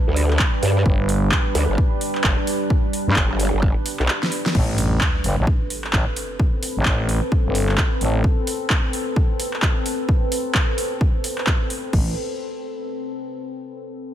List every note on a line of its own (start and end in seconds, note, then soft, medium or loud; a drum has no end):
0.00 4.51 G3 medium
0.00 4.51 D4 medium
0.00 4.51 B4 medium
0.08 0.38 D2 loud
0.16 open hi-hat loud
0.30 clap soft
0.39 kick loud
0.39 clap loud
0.63 0.84 G2 loud
0.63 open hi-hat medium
0.86 1.30 G1 loud
0.86 kick loud
1.09 open hi-hat loud
1.32 kick loud
1.32 clap loud
1.55 1.67 D2 loud
1.55 open hi-hat medium
1.69 1.77 G1 loud
1.78 kick loud
2.01 open hi-hat loud
2.15 clap soft
2.24 2.36 G1 loud
2.24 kick loud
2.24 clap loud
2.47 open hi-hat medium
2.70 kick loud
2.93 open hi-hat loud
3.08 3.15 G2 loud
3.16 3.51 G1 medium
3.16 kick loud
3.16 clap loud
3.40 open hi-hat medium
3.54 3.75 G1 loud
3.63 kick loud
3.86 open hi-hat loud
4.00 4.09 B1 loud
4.00 clap soft
4.08 clap loud
4.23 snare medium
4.32 open hi-hat medium
4.46 snare medium
4.55 5.00 A1 loud
4.55 11.89 C4 medium
4.55 11.89 A4 medium
4.55 11.89 B4 medium
4.55 kick loud
4.55 crash medium
4.55 sub drop medium
4.78 open hi-hat loud
5.01 kick loud
5.01 clap loud
5.24 5.36 G1 loud
5.24 open hi-hat medium
5.38 5.46 A1 loud
5.47 kick loud
5.70 open hi-hat loud
5.84 clap soft
5.93 6.05 A1 loud
5.93 kick loud
5.93 clap loud
6.16 open hi-hat medium
6.39 kick loud
6.63 open hi-hat loud
6.77 6.84 A1 medium
6.85 7.21 A1 loud
6.85 kick loud
6.85 clap loud
7.09 open hi-hat loud
7.32 kick loud
7.46 7.77 G1 loud
7.55 open hi-hat loud
7.69 clap soft
7.78 kick loud
7.78 clap loud
8.01 8.23 A1 loud
8.01 open hi-hat medium
8.24 kick loud
8.47 open hi-hat loud
8.70 kick loud
8.70 clap loud
8.93 open hi-hat loud
9.16 kick loud
9.40 open hi-hat loud
9.53 clap soft
9.62 kick loud
9.62 clap loud
9.86 open hi-hat medium
10.09 kick loud
10.32 open hi-hat loud
10.55 kick loud
10.55 clap loud
10.78 open hi-hat loud
11.01 kick loud
11.24 open hi-hat loud
11.38 clap soft
11.47 kick loud
11.47 clap loud
11.70 open hi-hat loud
11.93 12.15 A1 medium
11.93 kick loud
11.93 crash medium